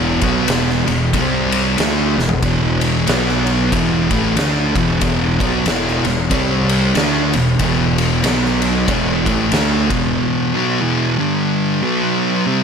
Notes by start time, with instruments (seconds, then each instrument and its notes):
Already playing: fingered electric bass E1, distorted electric guitar E2 B2 E3
0.21 fingered electric bass B1, distorted electric guitar B2 F#3 B3, kick, ride
0.48 fingered electric bass E1, distorted electric guitar E2 B2 E3, snare, ride
0.70 snare
0.88 fingered electric bass E1, distorted electric guitar E2 B2, ride
1.13 fingered electric bass C2, distorted electric guitar C3 G3 C4, kick, ride
1.52 ride
1.78 fingered electric bass D2, distorted electric guitar D3 A3 D4, snare, ride
2.17 fingered electric bass E1, distorted electric guitar E2 B2, snare
2.29 floor tom
2.42 fingered electric bass E1, distorted electric guitar E2 B2 E3, kick, ride
2.81 ride
3.07 fingered electric bass B1, distorted electric guitar B2 F#3 B3, snare, ride
3.29 snare
3.47 ride
3.72 fingered electric bass E1, distorted electric guitar E2 B2 E3, kick, ride
4.11 fingered electric bass A1, distorted electric guitar A2 E3 A3, kick, ride
4.37 fingered electric bass D2, distorted electric guitar D3 A3 D4, snare, ride
4.75 fingered electric bass E1, distorted electric guitar E2 B2 E3, kick, ride
5.01 kick, ride
5.40 fingered electric bass B1, distorted electric guitar B2 F#3 B3, kick, ride
5.66 fingered electric bass E1, distorted electric guitar E2 B2 E3, snare, ride
5.88 snare
6.04 fingered electric bass E1, distorted electric guitar E2 B2, snare, ride
6.30 fingered electric bass C2, distorted electric guitar C3 G3 C4, kick, ride
6.69 ride
6.95 fingered electric bass D2, distorted electric guitar D3 A3 D4, snare, ride
7.33 fingered electric bass E1, distorted electric guitar E2 B2, ride
7.59 fingered electric bass E1, distorted electric guitar E2 B2 E3, kick, ride
7.98 ride
8.23 fingered electric bass B1, distorted electric guitar B2 F#3 B3, snare, ride
8.46 snare
8.62 ride
8.88 fingered electric bass E1, distorted electric guitar E2 B2 E3, kick, ride
9.26 fingered electric bass A1, distorted electric guitar A2 E3 A3, kick, ride
9.52 fingered electric bass D2, distorted electric guitar D3 A3 D4, snare, ride
9.90 fingered electric bass E1, distorted electric guitar E2 B2 E3, kick, ride
10.54 distorted electric guitar B2 F#3 B3
10.81 distorted electric guitar E2 B2 E3
11.19 distorted electric guitar G2 D3 G3
11.83 distorted electric guitar B2 F#3 B3
12.46 distorted electric guitar C3 G3 C4